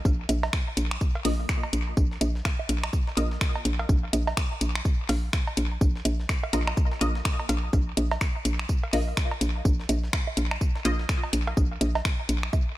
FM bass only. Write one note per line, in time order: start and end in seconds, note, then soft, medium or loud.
0.05 0.26 A#1 loud
0.29 0.50 A#1 loud
0.77 0.98 A#1 medium
1.25 1.46 A#1 loud
1.73 1.94 A#1 medium
1.97 2.18 A#1 loud
2.21 2.42 A#1 loud
2.69 2.90 A#1 medium
3.17 3.38 A#1 loud
3.65 3.86 A#1 medium
3.89 4.10 A#1 loud
4.13 4.34 A#1 loud
4.61 4.82 A#1 medium
5.09 5.30 A#1 loud
5.57 5.78 A#1 medium
5.81 6.02 A#1 loud
6.05 6.26 A#1 loud
6.53 6.74 A#1 loud
7.01 7.22 A#1 loud
7.49 7.70 A#1 medium
7.73 7.94 A#1 loud
7.97 8.18 A#1 loud
8.45 8.66 A#1 medium
8.93 9.14 A#1 loud
9.41 9.62 A#1 medium
9.65 9.86 A#1 loud
9.89 10.10 A#1 loud
10.37 10.58 A#1 medium
10.85 11.06 A#1 loud
11.33 11.54 A#1 medium
11.57 11.78 A#1 loud
11.81 12.02 A#1 loud
12.29 12.50 A#1 medium